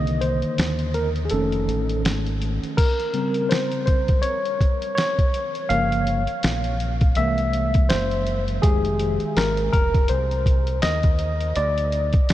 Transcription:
Already playing: fingered electric bass C2, tine electric piano D3 D#3 A#3 D#5
0.07 closed hi-hat
0.21 tine electric piano C5, closed hi-hat
0.42 muted fingered electric bass stroke, closed hi-hat
0.58 fingered electric bass D#2, snare, closed hi-hat
0.79 closed hi-hat
0.94 tine electric piano A#4, closed hi-hat
1.16 closed hi-hat
1.25 tine electric piano G#4
1.30 fingered electric bass F1, tine electric piano D#3 A3 C#4 A4, closed hi-hat
1.52 closed hi-hat
1.68 fingered electric bass A1, closed hi-hat
1.89 closed hi-hat
2.05 fingered electric bass G#1, snare, closed hi-hat
2.26 closed hi-hat
2.42 closed hi-hat
2.63 muted fingered electric bass stroke, closed hi-hat
2.77 tine electric piano A#4, kick, closed hi-hat, crash
3.00 closed hi-hat
3.13 tine electric piano C#3 G3 C4, closed hi-hat
3.34 closed hi-hat
3.49 tine electric piano C5, snare, closed hi-hat
3.72 closed hi-hat
3.86 tine electric piano C5, kick, closed hi-hat
4.08 kick, closed hi-hat
4.22 tine electric piano C#5, closed hi-hat
4.45 closed hi-hat
4.61 kick, closed hi-hat
4.82 closed hi-hat
4.95 tine electric piano C#5, snare, closed hi-hat
5.19 kick, closed hi-hat
5.34 closed hi-hat
5.55 closed hi-hat
5.69 fingered electric bass G1, tine electric piano C#3 F3 A#3 F5, closed hi-hat
5.92 closed hi-hat
6.07 closed hi-hat
6.27 closed hi-hat
6.43 fingered electric bass A#1, snare, closed hi-hat
6.64 closed hi-hat
6.80 closed hi-hat
7.01 kick, closed hi-hat
7.15 fingered electric bass C2, tine electric piano E3 G#3 A#3 E5, closed hi-hat
7.38 closed hi-hat
7.53 closed hi-hat
7.74 kick, closed hi-hat
7.89 fingered electric bass F#1, tine electric piano C5, snare, closed hi-hat
8.11 closed hi-hat
8.27 closed hi-hat
8.48 closed hi-hat
8.62 fingered electric bass F1, tine electric piano D#3 G#3 G4 G#4, kick, closed hi-hat
8.85 closed hi-hat
8.99 closed hi-hat
9.20 muted fingered electric bass stroke, closed hi-hat
9.37 fingered electric bass G#1, tine electric piano A#4, snare, closed hi-hat
9.57 closed hi-hat
9.73 fingered electric bass F1, tine electric piano A#4, kick, closed hi-hat
9.95 kick, closed hi-hat
10.08 fingered electric bass C2, tine electric piano C5, closed hi-hat
10.31 closed hi-hat
10.46 kick, closed hi-hat
10.67 closed hi-hat
10.82 fingered electric bass D#2, tine electric piano D#5, snare, closed hi-hat
11.03 kick, closed hi-hat
11.19 closed hi-hat
11.41 closed hi-hat
11.56 fingered electric bass D2, tine electric piano D5, closed hi-hat
11.78 closed hi-hat
11.92 closed hi-hat
12.13 kick, closed hi-hat
12.29 fingered electric bass C2, snare, closed hi-hat

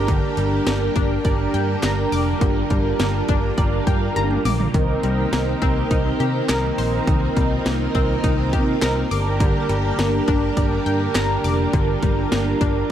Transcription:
Already playing: fingered electric bass G1, string machine D3 G3 A#3 G4, analog polysynth D4 G4 A#4
0.08 synth pluck D3, kick, closed hi-hat
0.37 fingered electric bass G1, synth pluck G3, closed hi-hat
0.66 fingered electric bass G1, synth pluck A#3, snare, closed hi-hat
0.96 fingered electric bass G1, synth pluck D4, kick, closed hi-hat
1.25 fingered electric bass G1, synth pluck D5, kick, closed hi-hat
1.54 fingered electric bass G2, synth pluck G5, closed hi-hat
1.83 fingered electric bass G1, synth pluck A#5, snare, clap, closed hi-hat
2.12 fingered electric bass F1, string machine F4, synth pluck D6, open hi-hat
2.41 fingered electric bass G1, synth pluck D3, kick, closed hi-hat
2.70 fingered electric bass G1, synth pluck G3, kick, closed hi-hat
2.99 fingered electric bass G1, synth pluck A#3, snare, closed hi-hat
3.29 fingered electric bass G1, synth pluck D4, kick, closed hi-hat
3.58 fingered electric bass G1, synth pluck D5, kick, closed hi-hat
3.87 fingered electric bass G2, synth pluck G5, kick, closed hi-hat
4.16 fingered electric bass G1, synth pluck A#5, closed hi-hat, high tom
4.31 mid tom
4.45 fingered electric bass A#1, synth pluck D6, mid tom, open hi-hat
4.60 floor tom
4.74 fingered electric bass C2, synth pluck D#3, string machine D#3 C4 G4, analog polysynth C4 D#4 A#4, kick, closed hi-hat
5.03 fingered electric bass C2, synth pluck G3, closed hi-hat
5.33 fingered electric bass C2, synth pluck A#3, snare, closed hi-hat
5.62 fingered electric bass C2, synth pluck C4, kick, closed hi-hat
5.91 fingered electric bass C2, synth pluck D#4, kick, closed hi-hat
6.20 fingered electric bass C3, synth pluck G4, closed hi-hat
6.49 fingered electric bass C2, synth pluck A#4, snare, clap, closed hi-hat
6.78 fingered electric bass A#1, synth pluck C5, open hi-hat
7.07 fingered electric bass C2, synth pluck D#3, string machine F4, kick, closed hi-hat
7.36 fingered electric bass C2, synth pluck G3, kick, closed hi-hat
7.66 fingered electric bass C2, synth pluck A#3, snare, closed hi-hat
7.95 fingered electric bass C2, synth pluck C4, kick, closed hi-hat
8.24 fingered electric bass C2, synth pluck D#4, kick, closed hi-hat
8.53 fingered electric bass C3, synth pluck G4, kick, closed hi-hat
8.82 fingered electric bass C2, synth pluck A#4, snare, clap, closed hi-hat
9.11 fingered electric bass G1, string machine D3 G3 G4, analog polysynth D4 G4 A#4, synth pluck D6, open hi-hat
9.40 synth pluck D3, kick, closed hi-hat
9.69 fingered electric bass G1, synth pluck G3, closed hi-hat
9.99 fingered electric bass G1, synth pluck A#3, snare, closed hi-hat
10.28 fingered electric bass G1, synth pluck D4, kick, closed hi-hat
10.57 fingered electric bass G1, synth pluck D5, kick, closed hi-hat
10.86 fingered electric bass G2, synth pluck G5, closed hi-hat
11.15 fingered electric bass G1, synth pluck A#5, snare, clap, closed hi-hat
11.44 fingered electric bass F1, string machine F4, synth pluck D6, open hi-hat
11.73 fingered electric bass G1, synth pluck D3, kick, closed hi-hat
12.03 fingered electric bass G1, synth pluck G3, kick, closed hi-hat
12.32 fingered electric bass G1, synth pluck A#3, snare, closed hi-hat
12.61 fingered electric bass G1, synth pluck D4, kick, closed hi-hat

